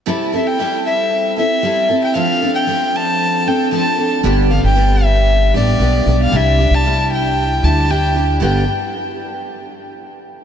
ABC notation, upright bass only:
X:1
M:4/4
L:1/16
Q:1/4=115
K:Gmix
V:1 name="Upright bass" clef=bass
z16 | z16 | G,,,3 G,,,6- G,,, A,,,2 B,,,2 B,,,2 | C,,3 C,,6- C,, D,,6 |
G,,,2 z12 z2 |]